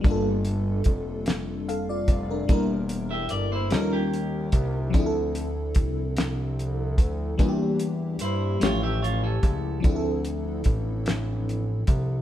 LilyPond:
<<
  \new Staff \with { instrumentName = "Clean electric guitar" } { \time 6/8 \key d \minor \tempo 4. = 49 r2. | r8. <g' e''>16 d''16 <e' c''>16 <des' bes'>16 <bes g'>4~ <bes g'>16 | r2. | r4 <e' c''>8 <f' cis''>16 <g' e''>16 <f' cis''>16 <cis' a'>8. |
r2. | }
  \new Staff \with { instrumentName = "FM electric piano" } { \time 6/8 \key d \minor << { r2 <a' f''>16 <f' d''>8 <d' bes'>16~ | <d' bes'>16 r2 r8. | r2. | r2. |
r2. | } \\ { <g bes d' f' a'>2. | <g bes d' e' bes'>4. <g des' ees' f' a' bes'>4. | <f c' d' e' gis' a'>2. | <g bes d' e' f' g'>4. <f a cis' e' g'>4. |
<f c' d' e' gis' a'>2. | } >> }
  \new Staff \with { instrumentName = "Analog synth bass" } { \clef bass \time 6/8 \key d \minor g,,4 f,,4. f,,8 | e,,4 g,,8 ees,4 c,8 | d,4 c,4. d,8 | e,4 g,8 a,,4 cis,8 |
d,4 a,,4. c,8 | }
  \new DrumStaff \with { instrumentName = "Drums" } \drummode { \time 6/8 <hh bd>8 hh8 <hh bd>8 <hh sn>8 hh8 <hh bd>8 | <hh bd>8 hh8 hh8 <hh sn>8 hh8 <hh bd>8 | <hh bd>8 hh8 <hh bd>8 <hh sn>8 hh8 <hh bd>8 | <hh bd>8 hh8 hh8 <hh sn>8 hh8 <hh bd>8 |
<hh bd>8 hh8 <hh bd>8 <hh sn>8 hh8 <hh bd>8 | }
>>